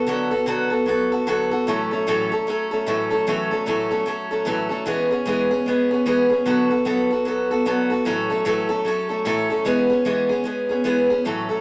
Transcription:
0.07 D3 F#3 B3 F#4 A4
0.31 B3 F#4 A4
0.46 D3 F#3 B3 F#4 A4
0.70 B3 F#4 A4
0.86 F#3 B3 F#4 A4
1.12 B3 F#4 A4
1.27 D3 F#3 B3 F#4 A4
1.51 B3 F#4 A4
1.67 A2 E3 F#3 A3 C#4 A4
1.91 F#3 A3 C#4 A4
2.07 A2 E3 F#3 A3 C#4 A4
2.32 F#3 A3 C#4 A4
2.47 F#3 A3 C#4 A4
2.71 F#3 A3 C#4 A4
2.86 A2 E3 F#3 A3 C#4 A4
3.10 F#3 A3 C#4 A4
3.27 A2 E3 F#3 A3 C#4 A4
3.51 F#3 A3 C#4 A4
3.66 A2 E3 F#3 A3 C#4 A4
3.91 F#3 A3 C#4 A4
4.06 F#3 A3 C#4 A4
4.31 F#3 A3 C#4 A4
4.45 A2 E3 F#3 A3 C#4 A4
4.69 F#3 A3 C#4 A4
4.86 E3 G#3 B3 C#4 G#4
5.11 B3 C#4 G#4
5.26 E3 G#3 B3 C#4 G#4
5.51 B3 C#4 G#4
5.66 G#3 B3 C#4 G#4
5.91 B3 C#4 G#4
6.06 E3 G#3 B3 C#4 G#4
6.30 B3 C#4 G#4
6.45 D3 F#3 B3 F#4 A4
6.70 B3 F#4 A4
6.85 D3 F#3 B3 F#4 A4
7.11 B3 F#4 A4
7.25 F#3 B3 F#4 A4
7.51 B3 F#4 A4
7.66 D3 F#3 B3 F#4 A4
7.90 B3 F#4 A4
8.05 A2 E3 F#3 A3 C#4 A4
8.30 F#3 A3 C#4 A4
8.45 A2 E3 F#3 A3 C#4 A4
8.69 F#3 A3 C#4 A4
8.85 F#3 A3 C#4 A4
9.09 F#3 A3 C#4 A4
9.25 A2 E3 F#3 A3 C#4 A4
9.50 F#3 A3 C#4 A4
9.65 E3 G#3 B3 C#4 G#4
9.90 B3 C#4 G#4
10.05 E3 G#3 B3 C#4 G#4
10.29 B3 C#4 G#4
10.44 G#3 B3 C#4 G#4
10.69 B3 C#4 G#4
10.84 E3 G#3 B3 C#4 G#4
11.10 B3 C#4 G#4
11.25 A2 E3 F#3 A3 C#4 A4
11.49 F#3 A3 C#4 A4

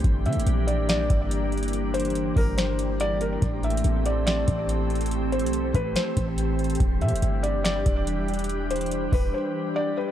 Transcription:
Already playing: E3
0.04 G1 G3 A#3 D4 G4, kick, closed hi-hat
0.25 D3 E5, closed hi-hat
0.33 G1, closed hi-hat
0.40 closed hi-hat
0.47 A#1, closed hi-hat
0.67 D5, closed hi-hat
0.78 A1
0.89 D5, snare, closed hi-hat
0.94 A#1
1.10 G1, kick, closed hi-hat
1.31 closed hi-hat
1.52 closed hi-hat
1.58 closed hi-hat
1.63 closed hi-hat
1.68 closed hi-hat
1.73 closed hi-hat
1.94 C5, closed hi-hat
2.00 closed hi-hat
2.05 closed hi-hat
2.10 closed hi-hat
2.15 closed hi-hat
2.36 G1 A#4, kick, open hi-hat
2.58 C5, snare, closed hi-hat
2.79 closed hi-hat
3.00 D5, closed hi-hat
3.21 A#4, closed hi-hat
3.42 A1 A3 C4, kick, closed hi-hat
3.63 E5, closed hi-hat
3.70 closed hi-hat
3.77 closed hi-hat
3.84 A1, closed hi-hat
4.06 D5, closed hi-hat
4.27 D5, snare, closed hi-hat
4.48 A1, kick, closed hi-hat
4.69 closed hi-hat
4.90 closed hi-hat
4.95 closed hi-hat
5.01 closed hi-hat
5.06 closed hi-hat
5.11 closed hi-hat
5.32 C5, closed hi-hat
5.39 B1, closed hi-hat
5.46 closed hi-hat
5.53 closed hi-hat
5.74 A1 B4, kick, closed hi-hat
5.96 C5, snare, closed hi-hat
6.17 A1, kick, closed hi-hat
6.38 closed hi-hat
6.59 closed hi-hat
6.64 closed hi-hat
6.70 closed hi-hat
6.75 closed hi-hat
6.80 E1 E3 G3 D4, kick, closed hi-hat
7.01 B2 E5, closed hi-hat
7.08 E1, closed hi-hat
7.15 closed hi-hat
7.22 G1, closed hi-hat
7.43 D5, closed hi-hat
7.54 F#1
7.64 D5, snare, closed hi-hat
7.70 G1
7.86 E1, kick, closed hi-hat
8.07 closed hi-hat
8.28 closed hi-hat
8.34 closed hi-hat
8.39 closed hi-hat
8.44 closed hi-hat
8.49 closed hi-hat
8.71 C5, closed hi-hat
8.76 closed hi-hat
8.81 closed hi-hat
8.86 closed hi-hat
8.91 closed hi-hat
9.12 E1 B4, kick, open hi-hat
9.34 C5
9.76 D5
9.97 B4

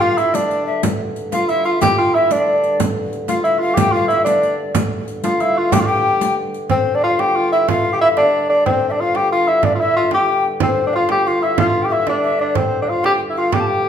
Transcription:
Already playing: G2 D3
0.00 F4 F5
0.18 E4 E5, riq
0.34 D4 D5, riq, frame drum
0.50 riq, frame drum
0.66 E5
0.83 riq, frame drum
1.16 riq
1.32 F4 F5, riq, frame drum
1.49 E4 E5, riq, frame drum
1.64 F4 F5
1.81 G4 G5, riq, frame drum
1.99 F4
2.15 E4 E5
2.31 D4 D5, riq, frame drum
2.64 riq, frame drum
2.80 G2 D3, riq, frame drum
3.13 riq
3.28 F4 F5, riq, frame drum
3.44 E4 E5, riq
3.59 F4 F5
3.74 G4, riq, frame drum
3.79 G5
3.92 F4 F5
4.08 E4 E5, riq
4.24 D4 D5, riq, frame drum
4.42 riq, frame drum
4.75 riq, frame drum
5.08 riq
5.24 F4 F5, riq, frame drum
5.40 E4, riq, frame drum
5.58 F4
5.72 G4 G5, riq, frame drum
5.80 F4
5.85 G4 G5, frame drum
6.21 riq, frame drum
6.54 riq
6.70 G2 D3 C4 C5, frame drum
6.87 frame drum
6.95 D4 D5
7.03 F4 F5
7.19 G4 G5, frame drum
7.36 F4
7.52 E4 E5, frame drum
7.68 F4 F5, frame drum
7.84 frame drum
7.93 G4 G5
8.01 E4 E5
8.17 D4 D5, frame drum
8.50 D4, frame drum
8.66 C4 C5, frame drum
8.82 frame drum
8.89 D4 D5 E5
9.00 F4 F5
9.15 G4 G5, frame drum
9.32 F4 F5
9.47 E4 E5, frame drum
9.63 D4 D5, frame drum
9.75 F4
9.79 E4 E5, frame drum
9.97 F4
10.11 G4 G5, frame drum
10.44 frame drum
10.60 G2 D3 C4 C5, frame drum
10.77 frame drum
10.87 D4
10.93 F4 F5
11.09 G4 G5, frame drum
11.26 F4 F5
11.42 E4 E5, frame drum
11.58 F4 F5, frame drum
11.74 frame drum
11.82 G4 G5
11.90 E4 E5
12.07 D4 D5, frame drum
12.22 E5
12.39 D4 D5, frame drum
12.55 C4 C5, frame drum
12.72 frame drum
12.82 D4
12.87 F4 F5
13.04 G4 G5, frame drum
13.30 E4
13.36 F4 F5, frame drum
13.52 G4 G5, frame drum
13.60 A5
13.67 G5
13.85 frame drum

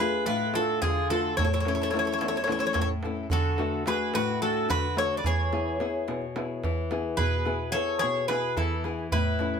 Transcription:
0.00 A3 D4 F4 G#4 B4
0.26 A2 F4 B4, darbuka tek
0.40 darbuka tek
0.53 A3 D4 F4 F#4 A4, darbuka tek
0.69 darbuka tek
0.82 D3 F4 G#4, darbuka tek, darbuka dum
0.97 darbuka tek
1.10 A3 D4 F4 F#4 A4, darbuka tek
1.24 darbuka tek
1.37 A2 A4 C#5, darbuka dum
1.44 A4 C#5
1.53 A4 C#5
1.60 A4 C#5
1.65 A3 C#4 E4 A4 C#5, darbuka tek
1.75 A4 C#5
1.82 A4 C#5
1.90 A3 A4 C#5, darbuka tek
1.94 C#4 E4 A4
1.99 C#5
2.05 A4 C#5
2.12 A4 C#5
2.18 E2 A4 C#5, darbuka tek
2.28 A4 C#5
2.36 A4 C#5
2.44 A4 C#5, darbuka tek
2.49 A3 C#4 E4 A4 C#5
2.59 A4 C#5
2.66 A4 C#5
2.73 A4 C#5, darbuka tek, darbuka dum
2.77 A2
2.81 A4 C#5
2.89 darbuka tek
3.03 A3 C#4 E4, darbuka tek
3.17 darbuka tek
3.30 D3 F#4 A4, darbuka dum
3.58 A3 D4 F#4, darbuka tek
3.86 A3 D4 F#4 G#4 B4, darbuka tek
4.14 A2 F#4 B4, darbuka tek
4.28 darbuka tek
4.42 A3 D4 F#4 A4
4.55 darbuka tek
4.69 D3 F#4 B4, darbuka tek, darbuka dum
4.84 darbuka tek
4.96 A3 D4 F#4 A4 C#5, darbuka tek
5.17 B4 D5
5.24 E3 G#4 C#5, darbuka dum
5.52 B3 E4 G#4, darbuka tek
5.80 B3 E4 G#4, darbuka tek
6.08 B2, darbuka tek
6.21 darbuka tek
6.36 B3 E4 G#4, darbuka tek
6.64 E3, darbuka tek, darbuka dum
6.78 darbuka tek
6.91 B3 E4 G#4, darbuka tek
7.17 B2 G#4 B4, darbuka dum
7.45 B3 E4 G#4, darbuka tek
7.72 B3 E4 G#4 A4 C#5, darbuka tek
7.99 B2 G#4 C#5, darbuka tek
8.16 darbuka tek
8.28 B3 E4 G#4 B4, darbuka tek
8.43 darbuka tek
8.57 E3 E4 A4, darbuka tek, darbuka dum
8.71 darbuka tek
8.84 B3 E4 G#4, darbuka tek
8.98 darbuka tek
9.12 A2 E4 B4, darbuka dum
9.39 A3 C#4 E4, darbuka tek

